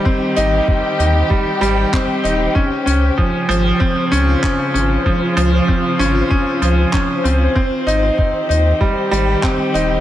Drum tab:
HH |-x-x-x-x|-x-x-x-x|-x-x-x-x|-x-x-x-x|
CP |------x-|------x-|------x-|------x-|
BD |o-o-o-o-|o-o-o-o-|o-o-o-o-|o-o-o-o-|